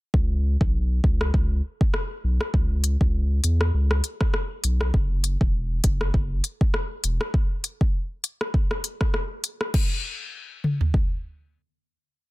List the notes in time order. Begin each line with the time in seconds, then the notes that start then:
0.14 C#2, kick
0.61 B1, kick
1.04 C#2, kick
1.21 cross-stick
1.34 C#2, kick
1.81 kick
1.94 cross-stick
2.24 B1
2.41 cross-stick
2.54 C#2, kick
2.84 closed hi-hat
3.01 C#2, kick
3.44 E2, closed hi-hat
3.61 cross-stick
3.74 C#2
3.91 cross-stick
4.04 closed hi-hat
4.21 kick, cross-stick
4.34 cross-stick
4.64 B1, closed hi-hat
4.81 cross-stick
4.94 F#1, kick
5.24 closed hi-hat
5.41 E1, kick
5.84 F#1, kick, closed hi-hat
6.01 cross-stick
6.14 F#1, kick
6.44 closed hi-hat
6.61 kick
6.74 cross-stick
7.04 E1, closed hi-hat
7.21 cross-stick
7.34 kick
7.64 closed hi-hat
7.81 kick
8.24 closed hi-hat
8.41 cross-stick
8.54 kick
8.71 cross-stick
8.84 closed hi-hat
9.01 kick, cross-stick
9.14 cross-stick
9.44 closed hi-hat
9.61 cross-stick
9.74 kick, crash
10.64 mid tom
10.81 floor tom
10.94 kick